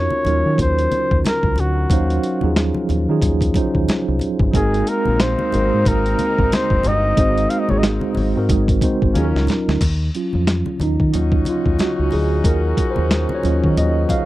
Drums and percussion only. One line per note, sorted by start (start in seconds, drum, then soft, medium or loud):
0.10 high conga medium
0.25 closed hi-hat medium
0.25 muted conga soft
0.25 low conga medium
0.58 kick loud
0.58 closed hi-hat medium
0.58 muted conga soft
0.58 low conga medium
0.79 closed hi-hat medium
0.92 closed hi-hat medium
0.92 muted conga soft
0.92 high conga medium
1.11 kick medium
1.24 snare loud
1.24 closed hi-hat medium
1.24 high conga medium
1.43 kick medium
1.56 closed hi-hat medium
1.56 muted conga soft
1.56 low conga medium
1.90 kick medium
1.90 closed hi-hat medium
1.90 muted conga soft
2.10 closed hi-hat soft
2.23 closed hi-hat medium
2.23 muted conga soft
2.41 high conga medium
2.56 snare loud
2.56 closed hi-hat medium
2.74 high conga medium
2.89 closed hi-hat medium
2.89 muted conga soft
2.89 low conga medium
3.22 kick medium
3.22 closed hi-hat medium
3.22 muted conga soft
3.22 low conga medium
3.41 kick medium
3.41 closed hi-hat medium
3.54 kick medium
3.54 closed hi-hat medium
3.54 muted conga soft
3.54 high conga medium
3.75 kick medium
3.88 snare loud
3.88 closed hi-hat medium
3.88 muted conga soft
3.88 high conga medium
4.19 closed hi-hat medium
4.19 muted conga soft
4.19 low conga medium
4.39 kick medium
4.54 kick loud
4.54 closed hi-hat medium
4.54 muted conga soft
4.74 closed hi-hat soft
4.87 closed hi-hat medium
5.05 high conga medium
5.20 snare loud
5.20 closed hi-hat medium
5.39 high conga medium
5.52 closed hi-hat medium
5.52 muted conga soft
5.52 low conga medium
5.85 kick loud
5.85 closed hi-hat medium
5.85 muted conga soft
5.85 low conga medium
6.06 closed hi-hat medium
6.19 closed hi-hat medium
6.19 muted conga soft
6.19 high conga medium
6.39 kick medium
6.52 snare loud
6.52 closed hi-hat medium
6.52 muted conga soft
6.52 high conga medium
6.70 kick medium
6.83 closed hi-hat medium
6.83 muted conga soft
6.83 low conga medium
7.17 kick loud
7.17 closed hi-hat medium
7.17 muted conga soft
7.38 closed hi-hat soft
7.50 closed hi-hat medium
7.50 muted conga soft
7.69 high conga medium
7.83 snare loud
7.83 closed hi-hat medium
8.01 high conga medium
8.15 open hi-hat soft
8.15 muted conga soft
8.15 low conga medium
8.49 kick medium
8.49 closed hi-hat loud
8.49 muted conga soft
8.49 low conga medium
8.68 kick loud
8.68 closed hi-hat medium
8.81 kick medium
8.81 closed hi-hat medium
8.81 muted conga soft
8.81 high conga medium
9.02 kick medium
9.15 closed hi-hat medium
9.15 muted conga soft
9.15 high conga medium
9.36 snare medium
9.47 snare medium
9.47 closed hi-hat medium
9.47 low conga medium
9.69 snare medium
9.81 kick medium
9.81 closed hi-hat medium
9.81 crash medium
9.81 muted conga soft
10.15 closed hi-hat medium
10.33 high conga medium
10.47 snare loud
10.47 closed hi-hat medium
10.47 muted conga soft
10.66 high conga medium
10.80 closed hi-hat medium
10.80 muted conga soft
10.80 low conga medium
11.00 kick medium
11.14 closed hi-hat medium
11.14 low conga medium
11.32 kick loud
11.45 closed hi-hat medium
11.45 muted conga soft
11.45 high conga medium
11.66 kick medium
11.79 snare medium
11.79 closed hi-hat medium
11.79 high conga medium
12.11 open hi-hat soft
12.11 muted conga soft
12.11 low conga medium
12.44 kick loud
12.44 closed hi-hat medium
12.77 kick medium
12.77 closed hi-hat medium
12.96 high conga medium
13.11 snare loud
13.11 closed hi-hat medium
13.29 high conga medium
13.43 closed hi-hat medium
13.43 muted conga soft
13.43 low conga medium
13.64 kick medium
13.77 closed hi-hat medium
13.77 low conga medium
14.09 kick medium
14.09 closed hi-hat medium
14.09 high conga medium